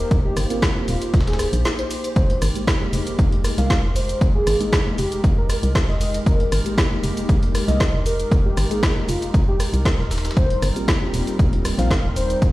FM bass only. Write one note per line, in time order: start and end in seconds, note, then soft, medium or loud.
0.11 0.28 D#1 loud
0.37 0.45 G1 loud
0.88 0.97 D#1 medium
1.14 1.45 D#1 medium
1.53 1.65 A#1 loud
2.16 2.33 F1 loud
2.42 2.50 G#1 loud
2.93 3.02 F1 medium
3.19 3.50 F1 medium
3.58 3.73 C2 loud
3.84 4.14 F1 medium
4.21 4.38 F1 loud
4.47 4.55 G#1 loud
4.98 5.07 F1 medium
5.24 5.55 F1 medium
5.63 5.79 C2 loud
5.89 6.19 F1 medium
6.26 6.43 F1 loud
6.52 6.61 G#1 medium
7.03 7.12 F1 medium
7.29 7.60 F1 medium
7.68 7.84 C2 loud
7.94 8.24 F1 medium
8.31 8.48 F1 loud
8.57 8.66 G#1 loud
9.08 9.17 F1 medium
9.34 9.65 F1 medium
9.73 9.89 C2 loud
9.99 10.29 D#1 medium
10.37 10.53 D#1 loud
10.62 10.71 G1 loud
11.14 11.22 D#1 medium
11.39 11.70 D#1 medium
11.78 11.94 A#1 loud
12.04 12.35 D#1 medium
12.42 12.52 D#1 loud